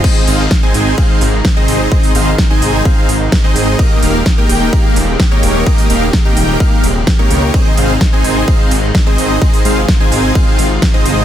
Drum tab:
CC |x---------------|----------------|----------------|----------------|
RD |x---x---x---x---|x---x---x---x---|x---x---x---x---|x---x---x---x---|
HH |--o---o---o---o-|-oo---o---o---o-|--o---o---o---o-|-oo---o---o---o-|
SD |----o-------o---|----o-------o---|----o-------o---|----o-------o---|
BD |o---o---o---o---|o---o---o---o---|o---o---o---o---|o---o---o---o---|

CC |----------------|----------------|
RD |x---x---x---x---|x---x---x---x---|
HH |--o---o---o---o-|-oo---o---o---o-|
SD |----o-------o---|----o-------o---|
BD |o---o---o---o---|o---o---o---o---|